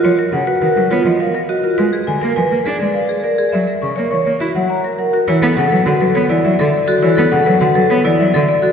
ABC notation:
X:1
M:3/4
L:1/16
Q:1/4=103
K:Gb
V:1 name="Marimba"
^c ^A ^f =B f B c ^d =f A d A | c A a B a B c =d f A d A | _f B d' d d' d f g b B g B | [K:Bm] c A f B f B c d e A d A |
c A f B f B c d e A d A |]
V:2 name="Vibraphone"
z3 ^F ^A z =F z A z ^F =F | z3 B c z A z c z B A | z3 B d z G z d z B G | [K:Bm] E z A z F A z E z A z F |
E z A z F A z E z A z F |]
V:3 name="Cello" clef=bass
F, z ^C, z ^D, ^F, =B, =F, z4 | A, z =D, B, F, B, =D A, z4 | G, z D, B, _F, B, _F G, z4 | [K:Bm] E, B, C, F, D, F, B, E, F, D, z2 |
E, B, C, F, D, F, B, E, F, D, z2 |]